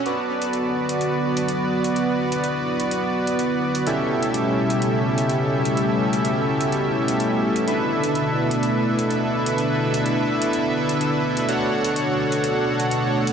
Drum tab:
HH |x--xx--xx--xx--x|x--xx--xx--xx--x|x--xx--xx--xx--x|x--xx--xx--xx--x|

HH |x--xx--xx--xx--x|x--xx--xx--xx--x|x--xx--xx--xx--x|